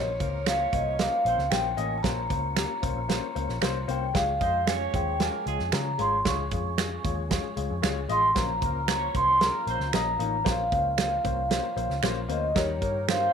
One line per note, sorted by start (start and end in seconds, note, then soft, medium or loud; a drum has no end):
0.00 0.17 A#1 loud
0.00 4.11 A#3 medium
0.00 8.32 C#4 soft
0.00 4.11 F4 soft
0.00 0.49 C#5 medium
0.00 4.11 C#5 medium
0.19 0.66 C#2 medium
0.19 0.41 A#3 medium
0.19 0.35 A#3 medium
0.19 0.35 C#4 medium
0.19 0.41 A#4 medium
0.19 0.36 C5 medium
0.19 kick medium
0.19 closed hi-hat medium
0.46 0.61 A#3 medium
0.46 0.96 C#4 medium
0.46 0.61 C#4 medium
0.46 0.62 C5 medium
0.46 0.96 C#5 loud
0.46 0.74 F5 medium
0.46 finger snap medium
0.46 snare loud
0.46 closed hi-hat medium
0.73 1.07 C2 medium
0.73 0.88 A#3 medium
0.73 0.88 C#4 medium
0.73 0.88 C5 medium
0.73 1.00 D#5 medium
0.73 kick loud
0.73 closed hi-hat medium
0.99 1.20 A#3 medium
0.99 1.14 A#3 medium
0.99 1.14 C#4 medium
0.99 1.20 A#4 medium
0.99 1.14 C5 medium
0.99 1.48 F5 medium
0.99 snare loud
0.99 closed hi-hat medium
1.25 1.37 A#1 medium
1.25 1.40 A#3 medium
1.25 1.47 C4 medium
1.25 1.40 C#4 medium
1.25 1.46 C5 medium
1.25 1.40 C5 medium
1.25 closed hi-hat medium
1.38 1.50 C#2 medium
1.38 snare soft
1.50 1.74 A#1 medium
1.50 1.67 A#3 medium
1.50 1.67 C#4 medium
1.50 1.67 C5 medium
1.50 1.78 G5 medium
1.50 finger snap medium
1.50 snare loud
1.50 closed hi-hat medium
1.77 2.00 A1 medium
1.77 1.92 A#3 medium
1.77 1.92 C#4 medium
1.77 1.92 D#5 loud
1.77 1.98 G#5 medium
1.77 closed hi-hat medium
1.98 2.05 A5 medium
2.03 2.27 A#1 loud
2.03 2.19 A#3 medium
2.03 2.19 C#4 medium
2.03 2.19 C5 loud
2.03 3.57 A#5 medium
2.03 kick medium
2.03 snare loud
2.03 closed hi-hat medium
2.30 2.65 C#2 medium
2.30 2.45 A#3 medium
2.30 2.45 C#4 medium
2.30 2.45 C5 medium
2.30 kick medium
2.30 closed hi-hat medium
2.56 2.71 A#3 medium
2.56 2.71 C#4 medium
2.56 2.72 G4 medium
2.56 finger snap medium
2.56 snare loud
2.56 closed hi-hat medium
2.82 2.95 C2 medium
2.82 2.98 A#3 medium
2.82 2.98 C#4 medium
2.82 2.98 C5 medium
2.82 kick medium
2.82 closed hi-hat medium
2.95 3.19 A#1 medium
3.08 3.24 A#3 medium
3.08 3.24 C#4 medium
3.08 3.24 C5 medium
3.08 snare loud
3.08 closed hi-hat medium
3.35 3.47 C#2 medium
3.35 3.50 A#3 medium
3.35 3.50 C#4 medium
3.35 3.50 C5 medium
3.35 closed hi-hat medium
3.49 3.60 A#1 medium
3.49 snare soft
3.61 3.85 C2 medium
3.61 3.77 A#3 loud
3.61 3.77 C#4 loud
3.61 3.77 C5 loud
3.61 finger snap medium
3.61 snare loud
3.61 closed hi-hat medium
3.88 4.11 C2 medium
3.88 4.03 A#3 medium
3.88 4.03 C#4 medium
3.88 4.03 C5 loud
3.88 4.16 G5 medium
3.88 closed hi-hat medium
4.14 4.38 C#2 loud
4.14 8.31 F3 medium
4.14 4.29 G#3 medium
4.14 8.31 G#3 medium
4.14 4.29 F4 medium
4.14 8.31 G#4 medium
4.14 4.29 C#5 loud
4.14 4.70 F5 medium
4.14 kick medium
4.14 snare loud
4.14 closed hi-hat medium
4.40 4.87 F2 medium
4.40 4.56 G#3 medium
4.40 4.62 C4 medium
4.40 4.56 F4 medium
4.40 4.62 C5 medium
4.40 4.56 D#5 medium
4.40 kick medium
4.40 closed hi-hat medium
4.67 4.82 G#3 medium
4.67 5.17 C#4 loud
4.67 4.82 F4 medium
4.67 5.17 C#5 loud
4.67 4.83 C#5 medium
4.67 4.80 G#5 medium
4.67 finger snap medium
4.67 snare loud
4.67 closed hi-hat medium
4.93 5.28 D#2 medium
4.93 5.08 G#3 medium
4.93 5.08 F4 medium
4.93 5.08 C5 medium
4.93 5.22 G5 medium
4.93 kick loud
4.93 closed hi-hat medium
5.20 5.35 G#3 medium
5.20 5.42 A#3 medium
5.20 5.35 F4 medium
5.20 5.41 A#4 medium
5.20 5.35 C#5 medium
5.20 5.70 G#5 loud
5.20 snare loud
5.20 closed hi-hat medium
5.46 5.58 C#2 medium
5.46 5.61 G#3 medium
5.46 5.68 G#3 medium
5.46 5.61 F4 medium
5.46 5.68 G#4 medium
5.46 5.61 C#5 medium
5.46 closed hi-hat medium
5.59 5.71 F2 medium
5.59 snare soft
5.72 5.96 C#3 medium
5.72 5.88 G#3 medium
5.72 5.88 F4 medium
5.72 5.88 C#5 medium
5.72 6.00 A#5 medium
5.72 finger snap medium
5.72 snare loud
5.72 closed hi-hat medium
5.98 6.22 G#1 medium
5.98 6.14 G#3 loud
5.98 6.14 F4 medium
5.98 6.14 C#5 loud
5.98 6.12 C6 medium
5.98 closed hi-hat medium
6.25 6.48 C#2 medium
6.25 6.40 G#3 medium
6.25 6.40 F4 medium
6.25 6.40 C#5 loud
6.25 7.80 C#6 medium
6.25 kick loud
6.25 snare loud
6.25 closed hi-hat medium
6.51 6.97 F2 medium
6.51 6.67 G#3 medium
6.51 6.67 F4 medium
6.51 6.67 C#5 medium
6.51 kick medium
6.51 closed hi-hat medium
6.78 6.93 G#3 medium
6.78 6.93 F4 medium
6.78 6.93 G#4 medium
6.78 finger snap loud
6.78 snare medium
6.78 closed hi-hat medium
7.04 7.39 D#2 medium
7.04 7.19 G#3 medium
7.04 7.19 F4 medium
7.04 7.19 C#5 medium
7.04 kick loud
7.04 closed hi-hat medium
7.30 7.45 G#3 medium
7.30 7.45 F4 medium
7.30 7.45 C#5 medium
7.30 kick loud
7.30 snare loud
7.30 closed hi-hat medium
7.56 7.68 C#2 medium
7.56 7.71 G#3 medium
7.56 7.72 F4 medium
7.56 7.72 C#5 medium
7.56 closed hi-hat medium
7.70 7.82 F2 medium
7.82 8.06 C#2 medium
7.82 7.98 G#3 loud
7.82 7.98 F4 medium
7.82 7.98 C#5 loud
7.82 finger snap medium
7.82 snare loud
7.82 closed hi-hat medium
8.09 8.32 A1 medium
8.09 8.24 G#3 medium
8.09 8.24 F4 medium
8.09 8.24 D#5 loud
8.09 8.23 C6 medium
8.09 closed hi-hat medium
8.35 8.59 A#1 loud
8.35 12.52 F3 medium
8.35 8.50 A#3 medium
8.35 13.33 A#3 medium
8.35 10.44 C#4 medium
8.35 8.50 C#4 medium
8.35 12.52 F4 medium
8.35 8.50 C5 loud
8.35 8.89 A#5 loud
8.35 kick loud
8.35 snare loud
8.35 closed hi-hat medium
8.61 9.08 C#2 medium
8.61 8.76 A#3 medium
8.61 8.83 A#3 medium
8.61 8.76 C#4 medium
8.61 8.83 A#4 medium
8.61 8.76 C5 medium
8.61 kick medium
8.61 closed hi-hat medium
8.88 9.03 A#3 medium
8.88 9.03 C#4 medium
8.88 9.38 C#4 loud
8.88 9.03 C5 medium
8.88 9.38 C#5 loud
8.88 9.02 A#5 medium
8.88 finger snap loud
8.88 snare medium
8.88 closed hi-hat medium
9.14 9.49 C2 medium
9.14 9.29 A#3 medium
9.14 9.29 C#4 medium
9.14 9.30 C5 medium
9.14 9.43 C6 loud
9.14 kick medium
9.14 closed hi-hat medium
9.41 9.62 A#3 medium
9.41 9.56 A#3 medium
9.41 9.56 C#4 medium
9.41 9.56 G#4 medium
9.41 9.62 A#4 medium
9.41 9.91 A#5 loud
9.41 snare loud
9.41 closed hi-hat medium
9.67 9.78 A#1 medium
9.67 9.82 A#3 medium
9.67 9.88 C4 medium
9.67 9.82 C#4 medium
9.67 9.82 C5 medium
9.67 9.88 C5 medium
9.67 closed hi-hat medium
9.80 9.92 C#2 medium
9.80 snare soft
9.93 10.16 A#1 medium
9.93 10.08 A#3 medium
9.93 10.08 C#4 medium
9.93 10.09 D#5 loud
9.93 10.48 A#5 loud
9.93 finger snap medium
9.93 snare loud
9.93 closed hi-hat medium
10.19 10.42 A1 medium
10.19 10.34 A#3 medium
10.19 10.34 C#4 medium
10.19 10.34 D#4 loud
10.19 closed hi-hat medium
10.44 10.69 A#1 loud
10.44 10.60 A#3 loud
10.44 10.60 C#4 medium
10.44 12.54 C#4 medium
10.44 10.60 C5 loud
10.44 kick loud
10.44 snare loud
10.44 closed hi-hat medium
10.49 12.01 F5 medium
10.71 11.18 C#2 medium
10.71 10.87 A#3 medium
10.71 10.87 C#4 medium
10.71 10.87 C5 medium
10.71 kick loud
10.71 closed hi-hat medium
10.97 11.13 A#3 medium
10.97 11.13 C#4 medium
10.97 11.13 C5 medium
10.97 finger snap loud
10.97 snare loud
10.97 closed hi-hat medium
11.24 11.59 C2 medium
11.24 11.39 A#3 medium
11.24 11.39 C#4 medium
11.24 11.40 C5 medium
11.24 kick medium
11.24 closed hi-hat medium
11.50 11.65 A#3 medium
11.50 11.66 C#4 medium
11.50 11.66 C5 loud
11.50 snare loud
11.50 closed hi-hat loud
11.76 11.88 A#1 medium
11.76 11.91 A#3 medium
11.76 11.92 C#4 medium
11.76 11.92 C5 medium
11.76 closed hi-hat medium
11.90 12.01 C#2 medium
11.90 snare soft
12.03 12.26 A#1 medium
12.03 12.18 A#3 loud
12.03 12.18 C#4 loud
12.03 12.18 C5 loud
12.03 finger snap medium
12.03 snare loud
12.03 closed hi-hat medium
12.29 12.52 D2 medium
12.29 12.44 A#3 loud
12.29 12.44 C#4 loud
12.29 12.45 C5 loud
12.29 12.58 D#5 medium
12.29 closed hi-hat medium
12.55 12.82 D#2 loud
12.55 13.33 D#3 medium
12.55 12.70 G3 loud
12.55 13.33 G3 medium
12.55 12.71 D#4 medium
12.55 13.33 G4 medium
12.55 12.71 A#4 loud
12.55 13.11 C#5 medium
12.55 kick loud
12.55 snare loud
12.55 closed hi-hat medium
12.81 13.28 G2 medium
12.81 12.97 G3 medium
12.81 13.03 A#3 medium
12.81 12.97 D#4 medium
12.81 13.03 A#4 medium
12.81 12.97 A#4 medium
12.81 kick medium
12.81 closed hi-hat medium
13.07 13.23 G3 medium
13.07 13.33 C4 medium
13.07 13.23 D#4 medium
13.07 13.23 A#4 medium
13.07 13.33 C5 loud
13.07 13.33 F5 medium
13.07 finger snap medium
13.07 snare loud
13.07 closed hi-hat medium